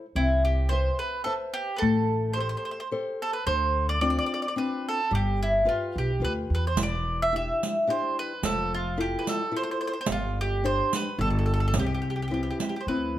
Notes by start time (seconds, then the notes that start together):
0.15 C2 C4 E4
0.45 G4
0.69 B4 C5 E5
0.99 B4
1.24 A4 B4 C5 E5
1.54 G4
1.76 A4 B4
1.82 A1 A3
2.33 G4 A4 C5
2.38 C5
2.49 C5
2.57 C5
2.65 C5
2.71 C5
2.80 C5
2.91 G4 A4 C5
3.22 A4
3.33 B4
3.47 D2 D3 C5
3.89 D5
4.01 C4 D4 F4 D5
4.10 D5
4.19 D5
4.26 D5
4.34 D5
4.42 D5
4.48 D5
4.56 C4 D4 F4 B4
4.89 A4
5.11 G1 G3 G4
5.43 E4
5.65 F4 G4 B4
5.96 B1 G4
6.20 D2 F4 G4 B4
6.24 B4
6.50 E2
6.55 B4
6.67 C5
6.76 E1 E3, riq
6.83 D5
7.22 E5
7.32 D4 E4 G4 E5
7.63 riq
7.87 D4 E4 G4 C5
8.19 B4
8.43 F1 F3 A4, riq
8.74 F4
8.97 E4 F4 G4 A4
9.19 B4
9.27 A4, riq
9.51 E4 F4 A4
9.57 C5
9.63 C5
9.71 C5
9.81 C5
9.87 C5
9.93 C5
10.01 C5
10.06 G1 G3, riq
10.12 F4
10.41 G4
10.64 D4 G4 C5
10.93 B4, riq
11.19 G1 G3 A4
11.30 A4
11.39 A4
11.46 A4
11.54 A4
11.60 A4
11.68 A4
11.74 C2 C3, riq
11.79 G4
11.86 G4
11.94 G4
12.02 G4
12.10 G4
12.16 G4
12.22 G4
12.28 B3 C4 E4 G4
12.34 G4
12.43 G4
12.51 G4
12.60 G4, riq
12.69 G4
12.76 G4
12.81 C5
12.87 D2 B3 C4 E4 B4